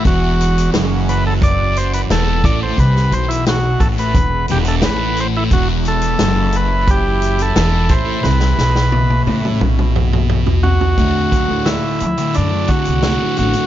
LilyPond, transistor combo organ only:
\new Staff \with { instrumentName = "Transistor combo organ" } { \time 4/4 \key e \minor \tempo 4 = 88 fis'4 r8 b'16 a'16 d''8 c''16 b'16 a'8 d''16 c''16 | b'8 c''16 e'16 fis'8 a'16 b'8. g'16 a'16 b'8 c''16 e'16 | fis'8 a'4 b'8 g'8. a'8. c''8 | b'4. r2 fis'8~ |
fis'4 e'4 d'8 fis'4 fis'8 | }